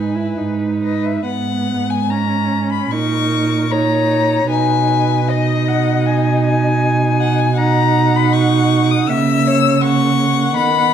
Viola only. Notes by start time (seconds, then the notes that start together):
Already playing: D#4
0.15 E4
0.38 D#4
1.27 B3
2.11 C#4
2.92 D#4
3.73 D#4
4.50 D#4
5.28 D#4
7.57 D#4
9.09 A#3
9.83 A#3
10.57 B3